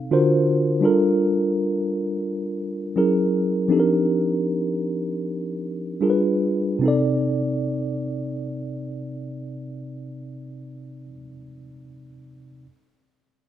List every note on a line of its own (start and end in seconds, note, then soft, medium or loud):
0.00 0.14 A4 medium
0.00 0.14 F5 medium
0.11 0.82 D3 medium
0.11 0.81 D4 medium
0.11 0.82 F4 medium
0.11 0.83 F#4 medium
0.11 0.83 A#4 medium
0.11 0.83 C5 medium
0.81 2.92 G3 medium
0.81 2.93 D4 medium
0.81 2.93 F4 medium
0.81 2.94 A4 medium
0.85 2.94 A#4 medium
2.96 3.70 F#3 medium
2.96 3.70 C#4 medium
2.96 3.70 E4 medium
2.96 3.71 G#4 medium
2.96 3.71 A#4 medium
3.68 5.96 F3 medium
3.68 5.97 C4 medium
3.68 5.97 D4 medium
3.68 5.98 D#4 medium
3.68 5.98 G4 medium
3.73 3.80 A4 medium
3.80 6.02 A#4 medium
6.01 6.83 G3 medium
6.01 6.83 D4 medium
6.01 6.83 F4 soft
6.01 6.84 G#4 medium
6.01 6.11 A#4 soft
6.10 6.87 B4 medium
6.79 11.05 C3 medium
6.79 11.08 C4 medium
6.83 11.09 D#4 medium
6.83 11.12 A4 medium
6.88 11.14 D5 medium